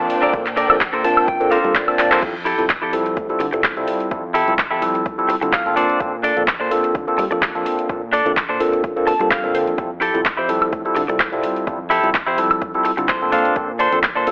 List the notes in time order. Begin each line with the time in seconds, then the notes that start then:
Already playing: D4 C5
0.00 A#3 C4 D4 F4 A5
0.10 G5, open hi-hat
0.22 D4 A4 A#4 D5, closed hi-hat
0.33 A#2 A#3 C4 D4 F4 A4, kick, closed hi-hat
0.46 clap, closed hi-hat
0.57 D4 A4 A#4 D5, open hi-hat
0.69 A#1 A#3 C4 D4 F4 A4, closed hi-hat, high woodblock
0.81 kick, clap, closed hi-hat
0.93 A#2 D4 A4 A#4 C5, closed hi-hat
1.04 A#3 C4 D4 F4 A5, open hi-hat
1.17 muted clean electric guitar stroke, closed hi-hat, high woodblock
1.28 G5, kick, closed hi-hat
1.40 A#3 C4 D4 F4 A4, closed hi-hat
1.51 D4 A4 A#4 C5 F5, open hi-hat
1.64 G3 A#3 C4 D4 F4 A4, closed hi-hat
1.75 D5, kick, clap, closed hi-hat
1.87 A#3 C4 D4 F4 A5, closed hi-hat, high woodblock
1.99 D5, clap, open hi-hat
2.11 A#1 D4 A4 A#4 C5, clap
2.22 F2 G3 C4 E4 F4 A4, kick, closed hi-hat, crash
2.45 E4 G4 A4, open hi-hat
2.58 F1 G3 C4 E4 F4 A4, closed hi-hat
2.70 kick, clap, closed hi-hat
2.82 F2 E4 G4 A4
2.93 F3 G3 C4 E4 A4, open hi-hat
3.05 muted clean electric guitar stroke, closed hi-hat
3.17 A2, kick, closed hi-hat
3.29 G3 C4 E4 F4 A4, closed hi-hat
3.40 D3, muted clean electric guitar stroke, open hi-hat
3.53 C2 G3 C4 E4 F4 A4, muted clean electric guitar stroke, closed hi-hat
3.63 muted clean electric guitar stroke, kick, clap, closed hi-hat
3.76 C2 G3 C4 E4 F4 A4, closed hi-hat
3.87 muted clean electric guitar stroke, open hi-hat
4.00 closed hi-hat
4.11 F2 G3 C4 E4 F4 A4, kick, closed hi-hat
4.34 E4 G4 A4, open hi-hat
4.47 F1 G3 C4 E4 F4 A4, closed hi-hat
4.59 kick, clap, closed hi-hat
4.71 F2 E4 G4 A4
4.82 F3 G3 C4 E4 A4, open hi-hat
4.94 muted clean electric guitar stroke, closed hi-hat
5.06 kick, closed hi-hat
5.18 G3 C4 E4 F4 A4, closed hi-hat
5.29 muted clean electric guitar stroke, open hi-hat
5.41 D3 G3 C4 E4 F4 A4, muted clean electric guitar stroke, closed hi-hat
5.52 F5, muted clean electric guitar stroke, kick, clap, closed hi-hat
5.66 F1 A#3 C4 D4 F4 A4, closed hi-hat
5.76 A#2 D4 A4 C5 D5, open hi-hat
5.89 closed hi-hat
6.00 A#2 A#3 C4 D4 F4 A4, kick, closed hi-hat
6.23 D4 A4 D5, open hi-hat
6.36 A#1 A#3 C4 D4 F4 A4, closed hi-hat
6.48 kick, clap, closed hi-hat
6.60 A#2 D4 A4 C5
6.71 A#3 C4 D4 F4 A4, open hi-hat
6.83 muted clean electric guitar stroke, closed hi-hat
6.95 D3, kick, closed hi-hat
7.07 A#3 C4 D4 F4 A4, closed hi-hat
7.18 G3, muted clean electric guitar stroke, open hi-hat
7.31 F2 A#3 C4 D4 F4 A4, muted clean electric guitar stroke, closed hi-hat
7.42 muted clean electric guitar stroke, kick, clap, closed hi-hat
7.55 F2 A#3 C4 D4 F4 A4, closed hi-hat
7.65 muted clean electric guitar stroke, open hi-hat
7.79 closed hi-hat
7.89 A#2 A#3 C4 D4 F4 A4, kick, closed hi-hat
8.12 D4 A4 D5, open hi-hat
8.25 A#1 A#3 C4 D4 F4 A4, closed hi-hat
8.37 kick, clap, closed hi-hat
8.49 A#2 D4 A4 C5
8.60 A#3 C4 D4 F4 A4, open hi-hat
8.72 muted clean electric guitar stroke, closed hi-hat
8.84 kick, closed hi-hat
8.96 A#3 C4 D4 F4 A4, closed hi-hat
9.07 A5, muted clean electric guitar stroke, open hi-hat
9.19 G3 A#3 C4 D4 F4 A4, muted clean electric guitar stroke, closed hi-hat
9.30 F5, muted clean electric guitar stroke, kick, clap, closed hi-hat
9.43 A#1 A#3 C4 D4 F4 A4, closed hi-hat
9.54 D3 C5, muted clean electric guitar stroke, open hi-hat
9.67 F2, closed hi-hat
9.77 G3 C4 E4 F4 A4, kick, closed hi-hat
10.01 E4 G4 A4, open hi-hat
10.14 F1 G3 C4 E4 F4 A4, closed hi-hat
10.25 kick, clap, closed hi-hat
10.37 F2 E4 G4 C5
10.48 F3 G3 C4 E4 A4, open hi-hat
10.61 muted clean electric guitar stroke, closed hi-hat, high woodblock
10.73 A2, kick, closed hi-hat
10.85 G3 C4 E4 F4 A4, closed hi-hat
10.95 D3, muted clean electric guitar stroke, open hi-hat
11.08 C2 G3 C4 E4 F4 A4, muted clean electric guitar stroke, closed hi-hat
11.19 muted clean electric guitar stroke, kick, clap, closed hi-hat
11.32 C2 G3 C4 E4 F4 A4, closed hi-hat
11.43 muted clean electric guitar stroke, open hi-hat
11.56 closed hi-hat
11.67 F2 G3 C4 E4 F4 A4, kick, closed hi-hat
11.90 E4 G4 A4, open hi-hat
12.03 F1 G3 C4 E4 F4 A4, closed hi-hat
12.14 kick, clap, closed hi-hat
12.27 F2 E4 G4 C5
12.38 F3 G3 C4 E4 A4, open hi-hat
12.50 muted clean electric guitar stroke, closed hi-hat, high woodblock
12.62 kick, closed hi-hat
12.74 G3 C4 E4 F4 A4, closed hi-hat
12.85 muted clean electric guitar stroke, open hi-hat
12.97 D3 G3 C4 E4 F4 A4, muted clean electric guitar stroke, closed hi-hat
13.08 C5, muted clean electric guitar stroke, kick, clap, closed hi-hat
13.21 F1 A#3 C4 D4 F4 A4, closed hi-hat
13.32 A#2 D4 A4 C5 F5, open hi-hat
13.45 closed hi-hat
13.56 A#2 A#3 C4 D4 F4 A4, kick, closed hi-hat
13.79 D4 A4 C5, open hi-hat
13.92 A#1 A#3 C4 D4 F4 A4, closed hi-hat
14.03 kick, clap, closed hi-hat
14.15 A#2 D4 A4 C5
14.27 A#3 C4 D4 F4 A4, open hi-hat